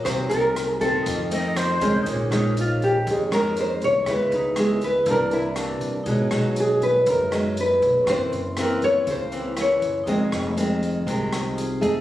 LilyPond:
<<
  \new Staff \with { instrumentName = "Flute" } { \time 4/4 \key bes \minor \tempo 4 = 120 r2 r8 ees''8 c''4 | r1 | r1 | r1 |
r1 | r1 | }
  \new Staff \with { instrumentName = "Nylon-string guitar" } { \time 4/4 \key bes \minor c''8 bes'4 a'2 r8 | r8 ees'8 f'8 g'8 aes'8 bes'8 c''8 des''8 | ces''8 ees'8 aes'8 ces''8 bes'8 e'8 r4 | r4 gis'8 b'8 bes'4 b'4 |
c''8 r8 bes'8 des''8 c''4 des''4 | ees''8 r2. r8 | }
  \new Staff \with { instrumentName = "Vibraphone" } { \time 4/4 \key bes \minor <ees' ges' bes' c''>2 <ees' f' a' c''>2 | <ees' aes' c'' des''>2~ <ees' aes' c'' des''>8 <ees' aes' c'' des''>4. | <fes' aes' ces'' ees''>2 <e' g' bes' d''>2 | <dis' fis' gis' des''>1 |
<des' fes' bes' c'''>1 | <ees' f' aes' c''>2. <ees' f' aes' c''>4 | }
  \new Staff \with { instrumentName = "Nylon-string guitar" } { \clef bass \time 4/4 \key bes \minor << { <ges bes ees'>4. <ees a c'>4 <ees a c'>4 <ees aes des'>8~ | <ees aes des'>8 <ees aes des'>2 <ees aes des'>4. | <aes ces' fes'>8 r8 <aes ces' fes'>8 r8 <e bes d'>4 <e bes d'>8 r8 | <fis gis dis'>8 <fis gis dis'>2 <fis gis dis'>4. |
<fes bes c'>8 r8 <fes bes c'>4 r8 <fes bes c'>8 <fes bes>8 r8 | <ees aes c'>4 <ees aes c'>4 <ees aes c'>4 r8 <a ees' aes'>8 | } \\ { c2 f,2 | bes,2 f,2 | des2 c2 | b,2 fis,2 |
ges,2 des2 | f,2 c2 | } >> }
  \new Staff \with { instrumentName = "Upright bass" } { \clef bass \time 4/4 \key bes \minor c,16 r16 c,4. f,4. c,8 | bes,,8 bes,,4. f,4. c,8 | des,8 des,4. c,4. c,8 | b,,8 b,,4. fis,4. b,,8 |
ges,,8 ges,,4. des,4. ges,,8 | f,,8 f,,4. c,4. f,,8 | }
  \new DrumStaff \with { instrumentName = "Drums" } \drummode { \time 4/4 <hh bd ss>8 hh8 <hh ss>8 <hh bd>8 <hh bd>8 hh8 <hh ss>8 <hh bd>8 | <hh bd>8 <hh ss>8 hh8 <hh bd>8 <hh bd>8 <hh ss>8 hh8 <hh bd>8 | <hh bd ss>8 hh8 <hh ss>8 <hh bd>8 <hh bd>8 hh8 <hh ss>8 <hh bd>8 | <hh bd>8 <hh ss>8 hh8 <hh bd>8 <hh bd>8 <hh ss>8 hh8 <hh bd>8 |
<hh bd ss>8 hh8 <hh ss>8 <hh bd>8 <hh bd>8 hh8 <hh ss>8 <hh bd>8 | <hh bd>8 <hh ss>8 hh8 <hh bd>8 <hh bd>8 <hh ss>8 hh8 <hh bd>8 | }
>>